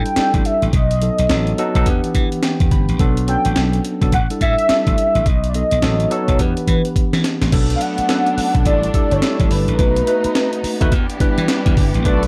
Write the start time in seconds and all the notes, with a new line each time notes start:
Already playing: G3 D4 E4 A4 G5
0.06 closed hi-hat
0.16 G3 D4 E4 A4, muted slap bass stroke, snare, closed hi-hat
0.34 A1, kick, closed hi-hat
0.45 E5, closed hi-hat
0.62 A1, closed hi-hat
0.73 B1 D#5, kick, closed hi-hat
0.91 closed hi-hat
1.01 F#3 B3 D#4 A4, closed hi-hat
1.18 B1, closed hi-hat
1.29 A1 F#3 B3 D#4 A4, snare, closed hi-hat
1.47 closed hi-hat
1.58 F#3 B3 D#4 A4, closed hi-hat
1.75 B1 F#3 B3 D#4 A4, kick, closed hi-hat
1.86 E2 E3 B3 D4 G4, kick, closed hi-hat
2.04 closed hi-hat
2.15 E3, kick, closed hi-hat
2.32 closed hi-hat
2.43 G5, snare, closed hi-hat
2.60 E2, kick, closed hi-hat
2.71 G1 B5, kick, closed hi-hat
2.89 A1, closed hi-hat
2.99 B1 F#3 B3 D4 A4, kick, closed hi-hat
3.17 closed hi-hat
3.28 F#3 B3 C#4 A4 G5, closed hi-hat
3.35 D4
3.45 A1, closed hi-hat
3.56 B1, snare, closed hi-hat
3.73 closed hi-hat
3.85 closed hi-hat
4.01 B1 F#3 B3 D4 A4, kick, closed hi-hat
4.12 A1 F#5, kick, closed hi-hat
4.30 G3 D4 E4 A4, closed hi-hat
4.41 A2 E5, kick, closed hi-hat
4.58 closed hi-hat
4.69 G3 D4 E4 A4, muted slap bass stroke, snare, closed hi-hat
4.87 A1, kick, closed hi-hat
4.98 closed hi-hat
5.15 A1, closed hi-hat
5.26 B1 D#5, kick, closed hi-hat
5.44 closed hi-hat
5.49 D5
5.54 F#3 B3 D#4 A4 D#5, closed hi-hat
5.71 B1, closed hi-hat
5.82 A1 F#3 B3 D#4 A4, snare, closed hi-hat
6.00 closed hi-hat
6.11 F#3 B3 D#4 A4 C#5, closed hi-hat
6.28 B1 F#3 B3 D#4 A4, kick, closed hi-hat
6.39 E2 E3 B3 D4 G4 B4, kick, closed hi-hat
6.57 closed hi-hat
6.67 E3, kick, closed hi-hat
6.85 closed hi-hat
6.96 kick, closed hi-hat
7.13 E3, snare, closed hi-hat
7.24 snare, closed hi-hat
7.41 A1, snare, closed hi-hat
7.52 B1 F#3 A3 B3 D4 A4, kick, closed hi-hat, crash
7.70 closed hi-hat
7.76 F5
7.81 F#5, closed hi-hat
7.98 muted slap bass stroke, closed hi-hat
8.09 F#3 B3 C#4 A4, snare, closed hi-hat
8.16 D4
8.26 closed hi-hat
8.37 muted slap bass stroke, open hi-hat
8.55 B1, kick, closed hi-hat
8.65 A1 G3 A3 D4 E4 A4 D5, kick, closed hi-hat
8.83 closed hi-hat
8.94 G3 D4 E4 A4, kick, closed hi-hat
9.11 G1 C#5, closed hi-hat
9.22 G3 D4 E4 A4, snare, closed hi-hat
9.40 A1, kick, closed hi-hat
9.51 G1 B4, open hi-hat
9.68 A1, closed hi-hat
9.79 B1 A3 B3 D#4 F#4 B4, kick, closed hi-hat
9.96 closed hi-hat
10.07 A3 D#4 F#4 B4, closed hi-hat
10.24 muted slap bass stroke, closed hi-hat
10.35 snare, closed hi-hat
10.53 closed hi-hat
10.64 muted slap bass stroke, open hi-hat
10.81 D#2 A3 D#4 F#4 B4, kick, closed hi-hat
10.92 E2 E3 D4 G4, kick, closed hi-hat
11.10 closed hi-hat
11.20 G3 D4 E4 B4, muted slap bass stroke, kick, closed hi-hat
11.38 E3, closed hi-hat
11.48 snare, closed hi-hat
11.66 E2, kick, closed hi-hat
11.77 G1, kick, open hi-hat
11.94 A1, closed hi-hat
12.05 B1 A3 D4 F#4 A4 B4 D5, kick, closed hi-hat
12.23 closed hi-hat